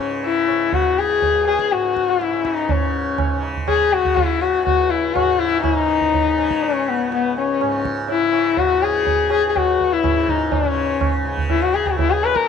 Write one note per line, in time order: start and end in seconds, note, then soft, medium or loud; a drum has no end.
0.00 1.09 C#2 medium
0.00 1.73 G#2 medium
0.00 0.51 C#3 medium
0.00 0.12 C#4 medium
0.11 tabla te medium
0.23 0.75 E4 medium
0.23 tabla tin medium
0.48 2.32 C#3 medium
0.48 tabla na soft
0.73 1.00 F#4 medium
0.73 tabla tin medium
0.73 tabla ge medium
0.99 1.47 G#4 medium
1.10 4.53 C#2 medium
1.22 tabla tin medium
1.22 tabla ge medium
1.47 1.74 G#4 medium
1.47 tabla na medium
1.59 tabla ke soft
1.72 2.69 G#2 medium
1.72 2.11 F#4 medium
1.72 tabla te medium
1.84 tabla te medium
1.96 tabla ke soft
2.08 2.47 E4 medium
2.08 tabla te medium
2.21 tabla te medium
2.32 3.31 C#3 soft
2.32 tabla te soft
2.45 2.72 D#4 medium
2.45 tabla ke medium
2.58 tabla te soft
2.69 5.15 G#2 medium
2.69 3.44 C#4 medium
2.69 tabla tin medium
2.69 tabla ge medium
3.18 tabla na medium
3.18 tabla ge medium
3.31 3.93 C#3 medium
3.43 tabla te medium
3.56 tabla ge soft
3.68 3.95 G#4 medium
3.68 tabla na medium
3.68 tabla ge medium
3.93 5.76 C#3 medium
3.93 4.18 F#4 medium
3.93 tabla te medium
4.05 tabla ge medium
4.17 4.42 E4 medium
4.17 tabla tin medium
4.17 tabla ge medium
4.41 4.65 F#4 medium
4.41 tabla na medium
4.54 7.00 C#2 medium
4.66 4.92 F#4 medium
4.66 tabla tin medium
4.66 tabla ge medium
4.90 5.16 E4 medium
5.14 7.61 G#2 medium
5.14 5.40 F#4 medium
5.14 tabla na medium
5.14 tabla ge medium
5.39 5.62 E4 medium
5.63 5.74 E4 medium
5.63 tabla na medium
5.63 tabla ge medium
5.74 6.37 C#3 medium
5.74 6.65 D#4 medium
5.88 tabla te medium
6.01 tabla ge medium
6.14 tabla tin medium
6.14 tabla ge medium
6.37 8.21 C#3 medium
6.37 tabla na medium
6.51 tabla ke medium
6.63 6.90 C#4 medium
6.63 tabla tin medium
6.88 7.12 B3 medium
6.88 tabla na medium
7.01 9.43 C#2 medium
7.12 7.35 B3 medium
7.12 tabla te medium
7.37 7.82 C#4 medium
7.37 tabla te medium
7.61 10.04 G#2 medium
7.61 tabla na medium
7.85 tabla ke medium
8.09 8.60 E4 medium
8.09 tabla tin medium
8.21 8.82 C#3 medium
8.33 tabla na medium
8.57 8.84 F#4 medium
8.57 tabla tin medium
8.57 tabla ge medium
8.82 10.64 C#3 medium
8.82 9.31 G#4 medium
8.82 tabla na medium
9.07 tabla tin medium
9.07 tabla ge medium
9.30 9.48 G#4 loud
9.30 tabla na medium
9.44 11.84 C#2 medium
9.49 9.58 G#4 medium
9.56 9.94 F#4 medium
9.56 tabla na medium
9.56 tabla ge medium
9.80 tabla ge soft
9.93 10.31 E4 medium
10.04 12.47 G#2 medium
10.04 tabla na medium
10.04 tabla ge medium
10.28 10.55 D#4 medium
10.28 tabla ge medium
10.52 11.26 C#4 medium
10.52 tabla tin loud
10.52 tabla ge medium
10.64 11.26 C#3 medium
11.01 tabla na medium
11.01 tabla ge medium
11.25 12.48 C#3 medium
11.25 tabla te medium
11.38 tabla ge soft
11.49 11.64 E4 medium
11.49 tabla na medium
11.49 tabla ge medium
11.63 11.76 F#4 medium
11.74 11.89 G#4 medium
11.74 tabla te medium
11.85 12.48 C#2 medium
11.85 11.98 F#4 medium
11.85 tabla ge medium
11.99 12.12 E4 medium
11.99 tabla tin medium
11.99 tabla ge medium
12.11 12.26 G#4 medium
12.23 12.38 B4 medium
12.23 tabla na medium
12.36 12.48 A#4 medium
12.36 tabla ke medium